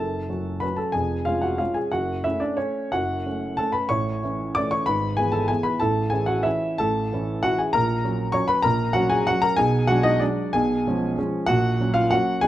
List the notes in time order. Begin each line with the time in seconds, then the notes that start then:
Already playing: F#1 F#2 A4 A5
0.29 F#3 C#4 F#4
0.60 F#3 C#4 F#4 B4 B5
0.76 A4 A5
0.92 F1 F2 G#4 G#5
1.25 G#3 C#4 F4 F5
1.41 F#4 F#5
1.58 G#3 C#4 F4 F5
1.74 G#4 G#5
1.92 F#1 F#2 F#4 F#5
2.24 A3 C#4 E4 E5
2.40 D4 D5
2.57 A3 C#4 C#5
2.92 F#1 F#2 F#4 F#5
3.26 A3 C#4
3.57 A3 C#4 A4 A5
3.72 B4 B5
3.89 A1 A2 C#5 C#6
4.23 E3 A3 C#4
4.55 E3 A3 C#4 D5 D6
4.71 C#5 C#6
4.86 G#1 G#2 B4 B5
5.17 E3 B3 E4 G#4 G#5
5.32 A4 A5
5.48 E3 B3 E4 G#4 G#5
5.63 B4 B5
5.80 A1 A2 A4 A5
6.10 E3 C#4 E4 G#4 G#5
6.26 F#4 F#5
6.43 E3 C#4 E4 E5
6.78 A1 A2 A4 A5
7.13 E3 C#4 E4
7.43 E3 C#4 E4 F#4 F#5
7.58 G#4 G#5
7.73 A#1 A#2 A#4 A#5
8.05 F#3 C#4
8.32 F#3 C#4 C#5 C#6
8.48 B4 B5
8.62 A#1 A#2 A#4 A#5
8.93 F#3 C#4 F#4 F#5
9.10 G#4 G#5
9.27 F#3 C#4 F#4 F#5
9.42 A#4 A#5
9.56 B1 B2 G#4 G#5
9.87 F#3 G#3 D4 F#4 F#5
10.03 D#4 D#5
10.20 F#3 G#3 D4 D5
10.53 B1 B2 G#4 G#5
10.87 F3 G#3 C#4
11.18 F3 G#3 C#4
11.46 A#1 A#2 F#4 F#5
11.80 F#3 A#3 C#4
11.94 F4 F5
12.11 F#3 A#3 C#4 F#4 F#5
12.41 B1 B2 G#4 G#5